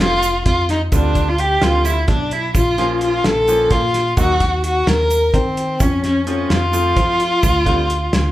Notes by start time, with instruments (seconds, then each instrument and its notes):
0.00 analog synth bass F1, grand piano F3 A3 C4 F4, alto saxophone F4, violin F4
0.23 closed hi-hat, shaker
0.46 analog synth bass F2, violin F4, alto saxophone F4, kick, closed hi-hat
0.69 alto saxophone D#4, violin D#4, snare, closed hi-hat
0.92 analog synth bass D2, grand piano D3 G3 C4 F4, alto saxophone D4, violin D4, kick, closed hi-hat, shaker
1.15 kick, closed hi-hat, shaker
1.28 alto saxophone F4, violin F4
1.38 alto saxophone G4, violin G4, closed hi-hat
1.62 analog synth bass D2, grand piano D3 G3 C4 F4, alto saxophone F4, violin F4, snare, closed hi-hat
1.85 violin E4, alto saxophone E4, snare, closed hi-hat, shaker
2.08 analog synth bass B1, violin D4, alto saxophone D4, kick, snare, closed hi-hat
2.31 violin E4, alto saxophone E4, closed hi-hat
2.55 analog synth bass A#1, violin F4, alto saxophone F4, kick, closed hi-hat, shaker
2.78 grand piano F3 A#3 C#4 F4, snare, closed hi-hat
3.01 violin F4, alto saxophone F4, closed hi-hat
3.24 analog synth bass A#1, alto saxophone A4, violin A4, snare, closed hi-hat
3.48 grand piano F3 A#3 C#4 F4, closed hi-hat, shaker
3.70 analog synth bass A#2, violin F4, alto saxophone F4, kick, closed hi-hat
3.94 snare, closed hi-hat
4.17 analog synth bass D#2, grand piano F#3 A#3 D#4 F#4, alto saxophone F#4, violin F#4, kick, closed hi-hat, shaker
4.40 kick, snare, closed hi-hat
4.64 alto saxophone F#4, violin F#4, closed hi-hat
4.87 analog synth bass D#2, alto saxophone A#4, violin A#4, snare, closed hi-hat
5.11 closed hi-hat, shaker
5.34 analog synth bass D#3, alto saxophone C4, violin C4, kick, closed hi-hat
5.57 closed hi-hat
5.80 analog synth bass F2, violin C#4, alto saxophone C#4, kick, closed hi-hat, shaker
6.04 alto saxophone C#4, violin C#4, snare, closed hi-hat
6.27 grand piano F3 A3 C4 F4, alto saxophone C#4, violin C#4, closed hi-hat
6.50 analog synth bass F2, alto saxophone F4, violin F4, snare, closed hi-hat
6.73 grand piano F3 A3 C4 F4, closed hi-hat, shaker
6.97 analog synth bass F3, kick, closed hi-hat
7.20 closed hi-hat
7.43 analog synth bass D2, kick, closed hi-hat, shaker
7.66 grand piano D3 G3 C4 F4, kick, closed hi-hat
7.90 closed hi-hat
8.13 analog synth bass D2, snare, closed hi-hat